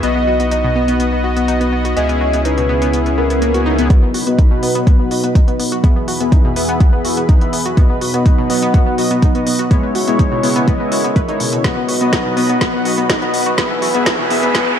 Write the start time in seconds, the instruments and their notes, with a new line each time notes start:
0.03 sub bass B1, analog synth pad B3 D#4 F#4, supersaw synth B3 F#4 D#5, synth pluck B3, soft synth lead D#5, closed hi-hat
0.16 synth pluck B3
0.27 synth pluck F#4
0.40 synth pluck B3, closed hi-hat
0.51 synth pluck D#4, soft synth lead D#5, closed hi-hat
0.64 synth pluck B2
0.76 synth pluck B3
0.88 synth pluck B3, closed hi-hat
1.00 synth pluck B3, closed hi-hat
1.12 synth pluck B3
1.24 synth pluck F#4
1.37 synth pluck B3, closed hi-hat
1.48 synth pluck D#4, closed hi-hat
1.61 synth pluck B3, closed hi-hat
1.72 synth pluck B3
1.85 synth pluck F#4, closed hi-hat
1.97 sub bass C#2, analog synth pad C#3 C#4 E4 G#4, synth pluck B3, supersaw synth C#4 E4 G#4, soft synth lead D#5, closed hi-hat
2.09 synth pluck B3, closed hi-hat
2.21 synth pluck F#4
2.33 synth pluck B3, closed hi-hat
2.45 synth pluck D#4, soft synth lead B4, closed hi-hat
2.58 synth pluck B2, closed hi-hat
2.69 synth pluck B3
2.82 synth pluck B3, closed hi-hat
2.93 synth pluck B3, closed hi-hat, swell
3.06 synth pluck B3, closed hi-hat
3.18 synth pluck B3, soft synth lead A#4
3.30 synth pluck B3, closed hi-hat
3.42 synth pluck A#3, closed hi-hat
3.54 synth pluck F#4, closed hi-hat
3.66 synth pluck D#4
3.78 synth pluck B3, closed hi-hat
3.90 analog synth pad B2 F#3 D#4 B4, synth pluck B3, supersaw synth B3 F#4 D#5, soft synth lead B4, kick, closed hi-hat
4.03 synth pluck B3
4.14 synth pluck F#4, open hi-hat
4.27 synth pluck B3, supersaw synth B3 F#4 D#5, closed hi-hat
4.39 synth pluck D#4, soft synth lead B4, kick, closed hi-hat
4.51 synth pluck B2
4.63 supersaw synth B3 F#4 D#5, synth pluck B3, open hi-hat
4.75 synth pluck B3, closed hi-hat
4.87 synth pluck B3, kick, closed hi-hat
5.00 synth pluck B3
5.11 supersaw synth B3 F#4 D#5, synth pluck F#4, open hi-hat
5.24 synth pluck B3, closed hi-hat
5.35 synth pluck D#4, kick, closed hi-hat
5.48 synth pluck B3, supersaw synth B3 F#4 D#5, closed hi-hat
5.59 synth pluck B3, open hi-hat
5.72 synth pluck F#4, closed hi-hat
5.84 analog synth pad E2 E3 G#4 B4, synth pluck B3, supersaw synth B3 G#4 E5, soft synth lead B4, kick, closed hi-hat
5.96 synth pluck B3
6.08 synth pluck F#4, open hi-hat
6.20 supersaw synth B3 G#4 E5, synth pluck B3, closed hi-hat
6.32 synth pluck D#4, soft synth lead B4, kick, closed hi-hat
6.45 synth pluck B2
6.56 synth pluck B3, supersaw synth B3 G#4 E5, open hi-hat
6.69 synth pluck B3, closed hi-hat
6.80 synth pluck B3, supersaw synth B3 F#5, kick, closed hi-hat
6.93 synth pluck B3
7.05 supersaw synth B3 G#4 E5, synth pluck F#4, soft synth lead B4, open hi-hat
7.17 synth pluck B3, closed hi-hat
7.29 synth pluck D#4, kick, closed hi-hat
7.41 synth pluck B3, supersaw synth B3 G#4 E5, closed hi-hat
7.53 synth pluck B3, open hi-hat
7.66 synth pluck F#4, closed hi-hat
7.77 analog synth pad B2 F#3 D#4, synth pluck B3, supersaw synth B3 F#4 D#5, soft synth lead D#5, kick, closed hi-hat
7.90 synth pluck B3
8.01 synth pluck F#4, open hi-hat
8.14 synth pluck B3, supersaw synth B3 F#4 D#5, closed hi-hat
8.25 synth pluck D#4, soft synth lead D#5, kick, closed hi-hat
8.38 synth pluck B2
8.50 synth pluck B3, supersaw synth B3 F#4 D#5, open hi-hat
8.62 synth pluck B3, closed hi-hat
8.74 synth pluck B3, supersaw synth B3 F#4 F#5, kick, closed hi-hat
8.87 synth pluck B3
8.98 supersaw synth B3 F#4 D#5, synth pluck F#4, open hi-hat
9.11 synth pluck B3, closed hi-hat
9.22 synth pluck D#4, kick, closed hi-hat
9.35 supersaw synth B3 F#4 D#5, synth pluck B3, closed hi-hat
9.47 synth pluck B3, open hi-hat
9.59 synth pluck F#4, closed hi-hat
9.71 analog synth pad C#3 G#3 E4 C#5, supersaw synth G#3 E4 C#5, synth pluck B3, soft synth lead D#5, kick, closed hi-hat
9.83 synth pluck B3
9.95 synth pluck F#4, open hi-hat
10.07 supersaw synth G#3 E4 C#5, synth pluck B3, closed hi-hat
10.19 synth pluck D#4, soft synth lead B4, kick, closed hi-hat
10.32 synth pluck B2
10.43 supersaw synth G#3 E4 C#5, synth pluck B3, open hi-hat
10.56 synth pluck B3, closed hi-hat
10.68 supersaw synth G#3 E4 D#5, synth pluck B3, kick, closed hi-hat
10.80 synth pluck B3
10.92 supersaw synth G#3 E4 C#5, synth pluck F#4, soft synth lead A#4, open hi-hat
11.04 synth pluck B3, closed hi-hat
11.16 synth pluck B4, kick, closed hi-hat
11.29 supersaw synth G#3 E4 C#5, synth pluck D#4, closed hi-hat
11.40 synth pluck B2, open hi-hat
11.53 synth pluck B2, closed hi-hat
11.64 analog synth pad B2 F#3 D#4 B4, synth pluck B3, supersaw synth B3 F#4 D#5, soft synth lead B4, kick, snare, closed hi-hat, riser
11.77 synth pluck B3
11.89 synth pluck F#4, open hi-hat
12.01 synth pluck B3, supersaw synth B3 F#4 D#5, closed hi-hat
12.13 synth pluck D#4, soft synth lead B4, kick, snare, closed hi-hat
12.25 synth pluck B2
12.37 synth pluck B3, supersaw synth B3 F#4 D#5, open hi-hat
12.49 synth pluck B3, closed hi-hat
12.61 supersaw synth B3 F#4 F#5, synth pluck B3, kick, snare, closed hi-hat
12.74 synth pluck B3
12.85 supersaw synth B3 F#4 D#5, synth pluck F#4, open hi-hat
12.98 synth pluck B3, closed hi-hat
13.10 synth pluck D#4, kick, snare, closed hi-hat
13.22 supersaw synth B3 F#4 D#5, synth pluck B3, closed hi-hat
13.34 synth pluck B3, open hi-hat
13.46 synth pluck F#4, closed hi-hat
13.58 analog synth pad E2 E3 G#4, synth pluck B3, supersaw synth B3 G#4 E5, soft synth lead B4, kick, snare, closed hi-hat
13.70 synth pluck B3
13.82 synth pluck F#4, open hi-hat
13.95 synth pluck B3, supersaw synth B3 G#4 E5, closed hi-hat
14.06 synth pluck D#4, soft synth lead B4, kick, snare, closed hi-hat
14.19 synth pluck B2
14.30 synth pluck B3, supersaw synth B3 G#4 E5, open hi-hat
14.43 synth pluck B3, closed hi-hat
14.55 synth pluck B3, supersaw synth B3 G#4 F#5, kick, snare, closed hi-hat
14.67 synth pluck B3